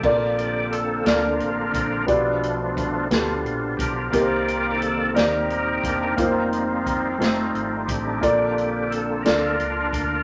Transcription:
Already playing: G4 D5
0.03 A#1 A#2 D3 F3 A#3 C4 D4 F4 A4 D5, kick, crash
0.38 closed hi-hat
0.71 A4, closed hi-hat
1.05 D2 A#3 D4 F4 A4 A#4 D5, snare, closed hi-hat
1.40 A1, closed hi-hat
1.74 A#1 A#4, kick, closed hi-hat
2.07 B1 B2 F3 G3 B3 F4 G4 D5, kick, closed hi-hat
2.11 A3 D4
2.43 closed hi-hat
2.77 kick, closed hi-hat
3.10 D2 B3 D4 F4 G4 A4, snare, closed hi-hat
3.44 A#1, closed hi-hat
3.77 B1 F4 G4 A#4, kick, closed hi-hat
4.11 C2 C3 D#3 A#3 C4 D#4 G4 A#4 D5, kick, closed hi-hat
4.21 C5
4.48 closed hi-hat
4.78 A4
4.82 closed hi-hat
5.14 D#2 A#3 D#4 G4 A#4 D5, snare, closed hi-hat
5.50 D#1, closed hi-hat
5.82 E1 D#3 A#3 D4 A#4, kick, closed hi-hat
6.17 F1 F3 G3 A#3 C4 D#4 F4 C5, kick, closed hi-hat
6.53 closed hi-hat
6.86 kick, closed hi-hat
7.19 F1 D#3 G3 A3 D#4 F4 C5, snare, closed hi-hat
7.23 C4 D#4
7.55 G#1, closed hi-hat
7.86 A1 G4, kick, closed hi-hat
7.90 D4
8.20 A#1 A#2 D3 A#3 D4 F4 A4 D5, kick, closed hi-hat
8.26 A#3 C4
8.58 closed hi-hat
8.90 A4, closed hi-hat
9.23 D2 D3 A#3 C4 D4 F4 A4 A#4 D5, snare, closed hi-hat
9.60 C#2, closed hi-hat
9.89 A#4
9.93 D2, kick, closed hi-hat

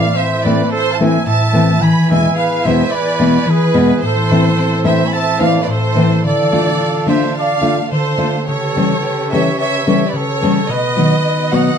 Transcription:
Already playing: A2 E3 A3 E4 C5 D5 F5
0.15 C4 C5 E5
0.44 A2 E3 A3 C4 E4 A4 B4 D5
0.71 A4 C5 A5
0.92 F5 A5
0.99 A2 E3 A3 C4 E4 E5 G#5
1.26 A2 E5 A5
1.53 A2 E3 A3 C4 E4
1.81 E3 B4 G#5 B5
2.08 E2 B2 E3 G#3 B3 E4 E5 G#5
2.35 G#4 B4 F5
2.63 E2 B2 E3 G#3 B3 E4 C5 E5
2.90 B4 D5 B5
3.19 E2 B2 E3 G#3 B3 E4
3.45 E3 B4
3.51 G#4
3.74 E2 B2 E3 G#3 B3 E4
4.01 A2 A3 C5
4.06 A4
4.30 A2 E3 A3 C4 E4
4.57 C4
4.84 A2 E3 A3 C4 E4 A4 E5
4.88 C5
5.06 G#5 B5
5.13 E5 A5
5.40 A2 E3 A3 C4 E4 F5
5.45 D5
5.62 B4 D5
5.67 A2 A4 C5
5.95 A2 E3 A3 C4 E4
6.23 D3 D4 A4 D5 F5
6.52 D3 A3 D4 F4
6.80 F4
7.06 D3 A3 D4 F4 C5 D5 E5
7.35 F5 A5
7.39 D5
7.61 D3 A3 D4 F4
7.91 D3 A4 C5
8.18 D3 A3 D4 F4
8.46 C#3 C#4 G4 A4 B4 C#5
8.75 C#3 E3 G3 A3 C#4 A4
9.03 G4
9.31 C#3 E3 G3 C#4 A4 C#5 E5
9.58 C#5 E5 A5
9.87 C#3 E3 G3 C#4 A4 C#5 E5
10.07 B4 D5
10.13 C#3 A4 C#5
10.41 C#3 E3 G3 A3 C#4 A4
10.67 B2 B3 F#4 D#5
10.71 B4
10.96 B2 D#3 F#3 B3 D#4 F#4
11.23 B3
11.52 B2 F#3 B3 D#4 F#4 D#5 F#5

